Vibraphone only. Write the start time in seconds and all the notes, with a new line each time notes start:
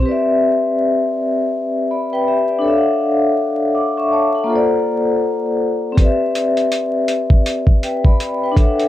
0.00 C4 G4
0.06 B4 D5
0.12 E5
1.91 D5 B5
2.13 B4 G5
2.28 G4 E5
2.50 D5
2.59 D4 A4
2.65 C#5 E5
2.70 F5
2.77 F#5
3.75 F#5 D6
3.97 E5 C#6
4.12 C#5 A5
4.35 A4 F#5
4.44 A#3 F4
4.50 A4 C5
4.55 D5
5.92 C4 G4
5.99 B4 D5
6.04 E5
7.83 B4 G5
8.05 D5 B5
8.43 B4 G5
8.52 D4 A4
8.57 C#5 E5
8.63 F#5